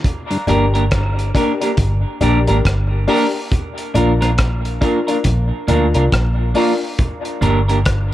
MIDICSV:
0, 0, Header, 1, 6, 480
1, 0, Start_track
1, 0, Key_signature, -2, "minor"
1, 0, Tempo, 868307
1, 24, Time_signature, 4, 2, 24, 8
1, 4499, End_track
2, 0, Start_track
2, 0, Title_t, "Upright piano"
2, 0, Program_c, 0, 0
2, 262, Note_on_c, 0, 62, 90
2, 265, Note_on_c, 0, 67, 92
2, 269, Note_on_c, 0, 70, 111
2, 383, Note_off_c, 0, 62, 0
2, 384, Note_off_c, 0, 67, 0
2, 386, Note_off_c, 0, 70, 0
2, 743, Note_on_c, 0, 62, 95
2, 746, Note_on_c, 0, 67, 81
2, 750, Note_on_c, 0, 70, 105
2, 864, Note_off_c, 0, 62, 0
2, 865, Note_off_c, 0, 67, 0
2, 867, Note_off_c, 0, 70, 0
2, 887, Note_on_c, 0, 62, 75
2, 892, Note_on_c, 0, 67, 67
2, 894, Note_on_c, 0, 70, 82
2, 966, Note_off_c, 0, 62, 0
2, 968, Note_off_c, 0, 67, 0
2, 969, Note_off_c, 0, 70, 0
2, 1220, Note_on_c, 0, 62, 92
2, 1223, Note_on_c, 0, 67, 77
2, 1227, Note_on_c, 0, 70, 94
2, 1342, Note_off_c, 0, 62, 0
2, 1344, Note_off_c, 0, 67, 0
2, 1345, Note_off_c, 0, 70, 0
2, 1368, Note_on_c, 0, 62, 69
2, 1371, Note_on_c, 0, 67, 63
2, 1374, Note_on_c, 0, 70, 80
2, 1446, Note_off_c, 0, 62, 0
2, 1448, Note_off_c, 0, 67, 0
2, 1449, Note_off_c, 0, 70, 0
2, 1611, Note_on_c, 0, 67, 24
2, 1611, Note_on_c, 0, 70, 27
2, 1649, Note_off_c, 0, 67, 0
2, 1649, Note_off_c, 0, 70, 0
2, 1700, Note_on_c, 0, 62, 97
2, 1703, Note_on_c, 0, 67, 85
2, 1707, Note_on_c, 0, 70, 108
2, 1822, Note_off_c, 0, 62, 0
2, 1824, Note_off_c, 0, 67, 0
2, 1826, Note_off_c, 0, 70, 0
2, 2180, Note_on_c, 0, 62, 95
2, 2183, Note_on_c, 0, 65, 83
2, 2187, Note_on_c, 0, 70, 107
2, 2302, Note_off_c, 0, 62, 0
2, 2304, Note_off_c, 0, 65, 0
2, 2306, Note_off_c, 0, 70, 0
2, 2659, Note_on_c, 0, 62, 89
2, 2663, Note_on_c, 0, 65, 81
2, 2666, Note_on_c, 0, 70, 112
2, 2782, Note_off_c, 0, 62, 0
2, 2784, Note_off_c, 0, 65, 0
2, 2785, Note_off_c, 0, 70, 0
2, 2808, Note_on_c, 0, 62, 80
2, 2811, Note_on_c, 0, 65, 72
2, 2814, Note_on_c, 0, 70, 82
2, 2886, Note_off_c, 0, 62, 0
2, 2888, Note_off_c, 0, 65, 0
2, 2890, Note_off_c, 0, 70, 0
2, 3141, Note_on_c, 0, 62, 90
2, 3144, Note_on_c, 0, 65, 81
2, 3148, Note_on_c, 0, 70, 98
2, 3263, Note_off_c, 0, 62, 0
2, 3265, Note_off_c, 0, 65, 0
2, 3266, Note_off_c, 0, 70, 0
2, 3287, Note_on_c, 0, 62, 70
2, 3291, Note_on_c, 0, 65, 65
2, 3295, Note_on_c, 0, 70, 75
2, 3366, Note_off_c, 0, 62, 0
2, 3368, Note_off_c, 0, 65, 0
2, 3370, Note_off_c, 0, 70, 0
2, 3531, Note_on_c, 0, 65, 24
2, 3531, Note_on_c, 0, 70, 28
2, 3569, Note_off_c, 0, 65, 0
2, 3569, Note_off_c, 0, 70, 0
2, 3622, Note_on_c, 0, 62, 99
2, 3626, Note_on_c, 0, 65, 90
2, 3629, Note_on_c, 0, 70, 100
2, 3743, Note_off_c, 0, 62, 0
2, 3745, Note_off_c, 0, 65, 0
2, 3747, Note_off_c, 0, 70, 0
2, 4499, End_track
3, 0, Start_track
3, 0, Title_t, "Clean electric guitar"
3, 0, Program_c, 1, 27
3, 262, Note_on_c, 1, 58, 78
3, 267, Note_on_c, 1, 62, 84
3, 270, Note_on_c, 1, 67, 81
3, 273, Note_on_c, 1, 70, 90
3, 353, Note_off_c, 1, 58, 0
3, 356, Note_off_c, 1, 62, 0
3, 357, Note_off_c, 1, 67, 0
3, 359, Note_off_c, 1, 70, 0
3, 408, Note_on_c, 1, 70, 67
3, 412, Note_on_c, 1, 67, 62
3, 415, Note_on_c, 1, 62, 61
3, 417, Note_on_c, 1, 58, 50
3, 454, Note_off_c, 1, 70, 0
3, 457, Note_off_c, 1, 67, 0
3, 458, Note_off_c, 1, 62, 0
3, 459, Note_off_c, 1, 58, 0
3, 743, Note_on_c, 1, 58, 70
3, 748, Note_on_c, 1, 62, 79
3, 750, Note_on_c, 1, 67, 79
3, 754, Note_on_c, 1, 70, 77
3, 834, Note_off_c, 1, 58, 0
3, 836, Note_off_c, 1, 62, 0
3, 837, Note_off_c, 1, 67, 0
3, 839, Note_off_c, 1, 70, 0
3, 893, Note_on_c, 1, 70, 63
3, 898, Note_on_c, 1, 67, 55
3, 900, Note_on_c, 1, 62, 57
3, 904, Note_on_c, 1, 58, 49
3, 937, Note_off_c, 1, 70, 0
3, 939, Note_off_c, 1, 67, 0
3, 941, Note_off_c, 1, 62, 0
3, 943, Note_off_c, 1, 58, 0
3, 1226, Note_on_c, 1, 58, 83
3, 1228, Note_on_c, 1, 62, 90
3, 1233, Note_on_c, 1, 67, 96
3, 1235, Note_on_c, 1, 70, 78
3, 1315, Note_off_c, 1, 58, 0
3, 1317, Note_off_c, 1, 62, 0
3, 1319, Note_off_c, 1, 67, 0
3, 1320, Note_off_c, 1, 70, 0
3, 1372, Note_on_c, 1, 70, 63
3, 1378, Note_on_c, 1, 67, 57
3, 1379, Note_on_c, 1, 62, 56
3, 1382, Note_on_c, 1, 58, 53
3, 1417, Note_off_c, 1, 70, 0
3, 1420, Note_off_c, 1, 62, 0
3, 1420, Note_off_c, 1, 67, 0
3, 1422, Note_off_c, 1, 58, 0
3, 1700, Note_on_c, 1, 58, 85
3, 1706, Note_on_c, 1, 62, 83
3, 1709, Note_on_c, 1, 67, 86
3, 1711, Note_on_c, 1, 70, 92
3, 1792, Note_off_c, 1, 58, 0
3, 1795, Note_off_c, 1, 62, 0
3, 1797, Note_off_c, 1, 67, 0
3, 1798, Note_off_c, 1, 70, 0
3, 2179, Note_on_c, 1, 58, 81
3, 2183, Note_on_c, 1, 62, 81
3, 2186, Note_on_c, 1, 65, 91
3, 2189, Note_on_c, 1, 70, 99
3, 2272, Note_off_c, 1, 58, 0
3, 2274, Note_off_c, 1, 62, 0
3, 2275, Note_off_c, 1, 65, 0
3, 2277, Note_off_c, 1, 70, 0
3, 2326, Note_on_c, 1, 70, 62
3, 2329, Note_on_c, 1, 62, 61
3, 2329, Note_on_c, 1, 65, 59
3, 2333, Note_on_c, 1, 58, 57
3, 2374, Note_off_c, 1, 70, 0
3, 2375, Note_off_c, 1, 65, 0
3, 2376, Note_off_c, 1, 62, 0
3, 2378, Note_off_c, 1, 58, 0
3, 2658, Note_on_c, 1, 58, 78
3, 2660, Note_on_c, 1, 62, 87
3, 2664, Note_on_c, 1, 70, 92
3, 2665, Note_on_c, 1, 65, 84
3, 2752, Note_off_c, 1, 58, 0
3, 2752, Note_off_c, 1, 62, 0
3, 2755, Note_off_c, 1, 65, 0
3, 2755, Note_off_c, 1, 70, 0
3, 2803, Note_on_c, 1, 70, 63
3, 2807, Note_on_c, 1, 65, 61
3, 2810, Note_on_c, 1, 62, 54
3, 2814, Note_on_c, 1, 58, 51
3, 2852, Note_off_c, 1, 70, 0
3, 2854, Note_off_c, 1, 65, 0
3, 2856, Note_off_c, 1, 62, 0
3, 2858, Note_off_c, 1, 58, 0
3, 3137, Note_on_c, 1, 58, 88
3, 3143, Note_on_c, 1, 62, 98
3, 3146, Note_on_c, 1, 65, 100
3, 3146, Note_on_c, 1, 70, 91
3, 3231, Note_off_c, 1, 58, 0
3, 3234, Note_off_c, 1, 62, 0
3, 3236, Note_off_c, 1, 65, 0
3, 3236, Note_off_c, 1, 70, 0
3, 3287, Note_on_c, 1, 70, 72
3, 3290, Note_on_c, 1, 65, 67
3, 3295, Note_on_c, 1, 62, 57
3, 3297, Note_on_c, 1, 58, 50
3, 3334, Note_off_c, 1, 70, 0
3, 3336, Note_off_c, 1, 65, 0
3, 3338, Note_off_c, 1, 62, 0
3, 3339, Note_off_c, 1, 58, 0
3, 3618, Note_on_c, 1, 58, 79
3, 3623, Note_on_c, 1, 62, 77
3, 3625, Note_on_c, 1, 65, 85
3, 3627, Note_on_c, 1, 70, 91
3, 3712, Note_off_c, 1, 58, 0
3, 3714, Note_off_c, 1, 62, 0
3, 3715, Note_off_c, 1, 65, 0
3, 3716, Note_off_c, 1, 70, 0
3, 4097, Note_on_c, 1, 58, 89
3, 4099, Note_on_c, 1, 62, 89
3, 4104, Note_on_c, 1, 67, 82
3, 4106, Note_on_c, 1, 70, 102
3, 4191, Note_off_c, 1, 58, 0
3, 4192, Note_off_c, 1, 62, 0
3, 4194, Note_off_c, 1, 67, 0
3, 4196, Note_off_c, 1, 70, 0
3, 4248, Note_on_c, 1, 70, 68
3, 4252, Note_on_c, 1, 67, 58
3, 4254, Note_on_c, 1, 62, 58
3, 4257, Note_on_c, 1, 58, 57
3, 4295, Note_off_c, 1, 70, 0
3, 4297, Note_off_c, 1, 67, 0
3, 4298, Note_off_c, 1, 62, 0
3, 4299, Note_off_c, 1, 58, 0
3, 4499, End_track
4, 0, Start_track
4, 0, Title_t, "Tonewheel organ"
4, 0, Program_c, 2, 16
4, 169, Note_on_c, 2, 43, 49
4, 172, Note_on_c, 2, 50, 56
4, 207, Note_off_c, 2, 43, 0
4, 208, Note_off_c, 2, 50, 0
4, 4499, End_track
5, 0, Start_track
5, 0, Title_t, "Fingered electric bass"
5, 0, Program_c, 3, 33
5, 267, Note_on_c, 3, 31, 98
5, 724, Note_off_c, 3, 31, 0
5, 986, Note_on_c, 3, 31, 94
5, 1122, Note_off_c, 3, 31, 0
5, 1227, Note_on_c, 3, 34, 82
5, 1363, Note_off_c, 3, 34, 0
5, 1375, Note_on_c, 3, 32, 89
5, 1461, Note_off_c, 3, 32, 0
5, 1467, Note_on_c, 3, 31, 78
5, 1690, Note_off_c, 3, 31, 0
5, 2189, Note_on_c, 3, 34, 89
5, 2645, Note_off_c, 3, 34, 0
5, 2904, Note_on_c, 3, 34, 92
5, 3041, Note_off_c, 3, 34, 0
5, 3148, Note_on_c, 3, 38, 90
5, 3283, Note_off_c, 3, 38, 0
5, 3289, Note_on_c, 3, 36, 85
5, 3378, Note_off_c, 3, 36, 0
5, 3388, Note_on_c, 3, 34, 84
5, 3611, Note_off_c, 3, 34, 0
5, 4105, Note_on_c, 3, 31, 93
5, 4499, Note_off_c, 3, 31, 0
5, 4499, End_track
6, 0, Start_track
6, 0, Title_t, "Drums"
6, 24, Note_on_c, 9, 42, 71
6, 25, Note_on_c, 9, 36, 103
6, 25, Note_on_c, 9, 64, 68
6, 80, Note_off_c, 9, 36, 0
6, 80, Note_off_c, 9, 42, 0
6, 80, Note_off_c, 9, 64, 0
6, 169, Note_on_c, 9, 42, 53
6, 225, Note_off_c, 9, 42, 0
6, 261, Note_on_c, 9, 64, 67
6, 265, Note_on_c, 9, 42, 71
6, 316, Note_off_c, 9, 64, 0
6, 320, Note_off_c, 9, 42, 0
6, 415, Note_on_c, 9, 42, 53
6, 470, Note_off_c, 9, 42, 0
6, 503, Note_on_c, 9, 42, 76
6, 507, Note_on_c, 9, 36, 103
6, 507, Note_on_c, 9, 37, 102
6, 559, Note_off_c, 9, 42, 0
6, 562, Note_off_c, 9, 37, 0
6, 563, Note_off_c, 9, 36, 0
6, 657, Note_on_c, 9, 42, 44
6, 712, Note_off_c, 9, 42, 0
6, 745, Note_on_c, 9, 36, 99
6, 748, Note_on_c, 9, 42, 84
6, 800, Note_off_c, 9, 36, 0
6, 804, Note_off_c, 9, 42, 0
6, 893, Note_on_c, 9, 42, 61
6, 948, Note_off_c, 9, 42, 0
6, 980, Note_on_c, 9, 42, 86
6, 982, Note_on_c, 9, 64, 64
6, 983, Note_on_c, 9, 36, 109
6, 1035, Note_off_c, 9, 42, 0
6, 1038, Note_off_c, 9, 36, 0
6, 1038, Note_off_c, 9, 64, 0
6, 1220, Note_on_c, 9, 64, 63
6, 1222, Note_on_c, 9, 42, 78
6, 1275, Note_off_c, 9, 64, 0
6, 1278, Note_off_c, 9, 42, 0
6, 1368, Note_on_c, 9, 42, 54
6, 1423, Note_off_c, 9, 42, 0
6, 1466, Note_on_c, 9, 36, 102
6, 1467, Note_on_c, 9, 42, 80
6, 1474, Note_on_c, 9, 37, 113
6, 1522, Note_off_c, 9, 36, 0
6, 1522, Note_off_c, 9, 42, 0
6, 1529, Note_off_c, 9, 37, 0
6, 1702, Note_on_c, 9, 46, 80
6, 1757, Note_off_c, 9, 46, 0
6, 1943, Note_on_c, 9, 42, 66
6, 1944, Note_on_c, 9, 36, 100
6, 1945, Note_on_c, 9, 64, 73
6, 1998, Note_off_c, 9, 42, 0
6, 1999, Note_off_c, 9, 36, 0
6, 2000, Note_off_c, 9, 64, 0
6, 2088, Note_on_c, 9, 42, 52
6, 2143, Note_off_c, 9, 42, 0
6, 2183, Note_on_c, 9, 64, 66
6, 2186, Note_on_c, 9, 42, 66
6, 2239, Note_off_c, 9, 64, 0
6, 2241, Note_off_c, 9, 42, 0
6, 2332, Note_on_c, 9, 42, 54
6, 2334, Note_on_c, 9, 37, 56
6, 2388, Note_off_c, 9, 42, 0
6, 2389, Note_off_c, 9, 37, 0
6, 2421, Note_on_c, 9, 42, 80
6, 2425, Note_on_c, 9, 37, 111
6, 2426, Note_on_c, 9, 36, 102
6, 2476, Note_off_c, 9, 42, 0
6, 2480, Note_off_c, 9, 37, 0
6, 2481, Note_off_c, 9, 36, 0
6, 2571, Note_on_c, 9, 42, 44
6, 2627, Note_off_c, 9, 42, 0
6, 2663, Note_on_c, 9, 36, 96
6, 2665, Note_on_c, 9, 42, 79
6, 2718, Note_off_c, 9, 36, 0
6, 2720, Note_off_c, 9, 42, 0
6, 2809, Note_on_c, 9, 42, 56
6, 2864, Note_off_c, 9, 42, 0
6, 2897, Note_on_c, 9, 42, 85
6, 2902, Note_on_c, 9, 36, 102
6, 2906, Note_on_c, 9, 64, 72
6, 2953, Note_off_c, 9, 42, 0
6, 2957, Note_off_c, 9, 36, 0
6, 2961, Note_off_c, 9, 64, 0
6, 3141, Note_on_c, 9, 64, 71
6, 3142, Note_on_c, 9, 42, 68
6, 3196, Note_off_c, 9, 64, 0
6, 3197, Note_off_c, 9, 42, 0
6, 3286, Note_on_c, 9, 42, 56
6, 3341, Note_off_c, 9, 42, 0
6, 3385, Note_on_c, 9, 42, 82
6, 3386, Note_on_c, 9, 36, 101
6, 3392, Note_on_c, 9, 37, 121
6, 3440, Note_off_c, 9, 42, 0
6, 3441, Note_off_c, 9, 36, 0
6, 3447, Note_off_c, 9, 37, 0
6, 3620, Note_on_c, 9, 46, 76
6, 3676, Note_off_c, 9, 46, 0
6, 3862, Note_on_c, 9, 42, 68
6, 3864, Note_on_c, 9, 36, 100
6, 3864, Note_on_c, 9, 64, 68
6, 3917, Note_off_c, 9, 42, 0
6, 3919, Note_off_c, 9, 36, 0
6, 3920, Note_off_c, 9, 64, 0
6, 4008, Note_on_c, 9, 42, 54
6, 4063, Note_off_c, 9, 42, 0
6, 4101, Note_on_c, 9, 64, 64
6, 4104, Note_on_c, 9, 42, 70
6, 4156, Note_off_c, 9, 64, 0
6, 4160, Note_off_c, 9, 42, 0
6, 4253, Note_on_c, 9, 42, 52
6, 4308, Note_off_c, 9, 42, 0
6, 4342, Note_on_c, 9, 42, 85
6, 4346, Note_on_c, 9, 36, 103
6, 4346, Note_on_c, 9, 37, 112
6, 4397, Note_off_c, 9, 42, 0
6, 4401, Note_off_c, 9, 36, 0
6, 4401, Note_off_c, 9, 37, 0
6, 4499, End_track
0, 0, End_of_file